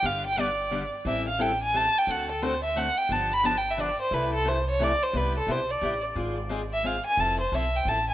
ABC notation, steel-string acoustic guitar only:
X:1
M:3/4
L:1/16
Q:"Swing" 1/4=176
K:C
V:1 name="Steel-string acoustic guitar"
[D,G,B,DG]2 z2 [D,G,B,DG] z3 [D,G,B,DG] z3 | [E,G,CEA]2 z2 [E,G,CEA] z3 [E,G,CEA] z3 | [D,A,C^FA]2 z2 [D,A,CFA] z3 [D,A,CFA] z3 | [D,F,B,DG]2 z2 [D,F,B,DG] z3 [D,F,B,DG] z3 |
[C,E,A,EA]2 z2 [C,E,A,EA] z3 [C,E,A,EA] z3 | [C,G,B,EG]2 z2 [C,G,B,EG] z3 [C,G,B,EG] z3 | [_A,CF_A]2 z2 [A,CFA] z3 [A,CFA] z3 | [F,CEA]2 z2 [F,CEA] z3 [F,CEA] z3 |]